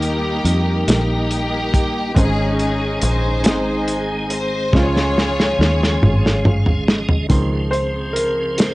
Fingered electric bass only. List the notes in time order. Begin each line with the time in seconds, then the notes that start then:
Already playing: D#2
0.44 F2
0.88 A#1
2.16 G#1
3.03 A#1
3.46 G#1
4.73 C#2
5.59 D#2
6.02 G#1
7.30 C#2